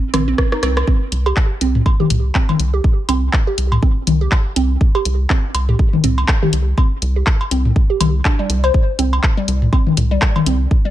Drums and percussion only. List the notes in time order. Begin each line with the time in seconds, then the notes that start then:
0.14 cross-stick, closed hi-hat, high tom, cowbell
0.38 kick, cross-stick
0.52 cross-stick
0.63 cross-stick, closed hi-hat
0.77 cross-stick, cowbell
0.87 kick
1.12 closed hi-hat
1.26 cowbell
1.37 kick, clap
1.61 closed hi-hat
1.75 mid tom
1.86 kick, cowbell
2.00 high tom
2.10 closed hi-hat, mid tom
2.35 kick, clap
2.49 high tom, cowbell
2.60 closed hi-hat
2.84 kick
3.09 closed hi-hat, cowbell
3.33 kick, clap
3.58 closed hi-hat
3.72 mid tom, cowbell
3.83 kick
4.07 closed hi-hat, high tom
4.32 kick, clap, cowbell
4.56 closed hi-hat
4.81 kick
4.95 cowbell
5.05 closed hi-hat
5.30 kick, clap
5.55 closed hi-hat, cowbell
5.69 mid tom
5.79 kick
5.93 high tom
6.04 closed hi-hat, mid tom
6.18 cowbell
6.28 kick, clap
6.43 high tom
6.53 closed hi-hat
6.78 kick, cowbell
7.02 closed hi-hat
7.27 kick, clap
7.41 cowbell
7.51 closed hi-hat
7.65 mid tom
7.76 kick
8.01 closed hi-hat, high tom, cowbell
8.25 kick, clap
8.50 closed hi-hat
8.64 cowbell
8.74 kick
8.99 closed hi-hat
9.13 cowbell
9.23 kick, clap
9.48 closed hi-hat
9.62 mid tom
9.73 kick, cowbell
9.87 high tom
9.97 closed hi-hat, mid tom
10.22 kick, clap
10.36 high tom, cowbell
10.46 closed hi-hat
10.71 kick